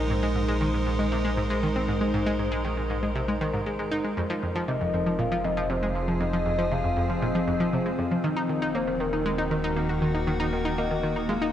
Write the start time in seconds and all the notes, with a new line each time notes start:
Already playing: A#1 G#3 D#4 A#4 C5
0.10 G#2
0.23 G#3
0.36 G#2
0.48 G#3
0.61 D#3
0.74 G#2
0.87 G#2
0.99 G#3
1.12 C3
1.25 G#3
1.37 G#2
1.50 G#3
1.63 D#3
1.76 C4
1.88 G#2
2.01 G#3
2.14 G#2
2.26 G#3
2.39 G#2
2.52 G#3
2.65 D#3
2.77 G#2
2.90 G#2
3.03 G#3
3.15 C3
3.28 G#3
3.41 D#3
3.54 G#2
3.66 G#3
3.79 G#3
3.91 D#4
4.04 G#3
4.17 F1 F2 F3
4.30 F3
4.43 F2 C4
4.55 F3
4.68 C3 D#5
4.81 F2
4.94 F2
5.06 F3
5.19 A#2 G#4 F5
5.32 F3
5.44 F2 D#5
5.57 F3
5.70 C3 C5
5.83 G#3
5.95 F2
6.08 F3
6.21 F2 D#5
6.33 F3
6.46 F2
6.59 F3
6.72 C3 F5
6.84 F2
6.97 F2
7.10 F3
7.22 A#2 D#5
7.35 F3
7.48 F2
7.60 F3
7.73 C3 C5
7.86 G#3
7.99 F2 F5
8.11 F3
8.23 D#1 D#3 D#5
8.37 D#4
8.49 D#3
8.60 A#3 D#4
8.75 A#3 C5
8.87 D#3
9.00 D#3 A#4
9.13 D#4 F#4
9.26 G#3
9.38 D#4
9.51 D#3
9.64 D#4
9.77 A#3
9.89 F#4
10.02 D#3
10.14 D#4
10.27 D#3
10.40 D#4
10.53 D#3
10.65 D#4
10.78 A#3 D#5
10.91 D#3
11.03 D#3
11.16 D#4
11.29 G#3 F5
11.42 D#4